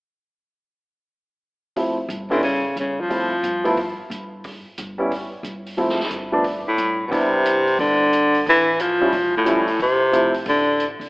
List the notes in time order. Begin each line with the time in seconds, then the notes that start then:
1.76 F3 A3 C4 E4, kick, open hi-hat
2.09 G1, closed hi-hat
2.30 D3 G3 B3 C#4 E4, open hi-hat
2.43 C#3, kick, open hi-hat
2.76 G1 C#3, closed hi-hat
3.01 F3
3.09 F3 A3 C4 E4, kick, open hi-hat
3.43 G1, closed hi-hat
3.64 F3 A3 B3 E4, open hi-hat
3.77 kick, open hi-hat
4.10 G1, closed hi-hat
4.44 kick, open hi-hat
4.78 G1, closed hi-hat
4.98 G3 B3 C#4 E4
5.12 kick, open hi-hat
5.43 G1, closed hi-hat
5.66 open hi-hat
5.77 F3 A3 C4 E4, kick, open hi-hat
5.89 snare
6.00 snare
6.09 G1, closed hi-hat
6.32 F3 A3 B3 D4
6.44 kick, open hi-hat
6.67 A2
6.78 G1, closed hi-hat
7.07 B2 C3 G3 B3
7.11 C2 D4 E4, kick, open hi-hat
7.45 closed hi-hat
7.67 open hi-hat
7.79 G1 D3, kick, open hi-hat
8.13 closed hi-hat
8.35 open hi-hat
8.46 A1 E3, kick, open hi-hat
8.80 F3, closed hi-hat
9.00 F3 G3 C#4 E4
9.13 E1, kick, open hi-hat
9.37 A2
9.45 C#2 F3 G3 C#4 E4, closed hi-hat
9.68 open hi-hat
9.79 D2 C3, kick, open hi-hat
10.12 F3 A3 C4 E4, closed hi-hat
10.34 open hi-hat
10.46 A1 D3, kick, open hi-hat
10.80 closed hi-hat
11.00 C2, open hi-hat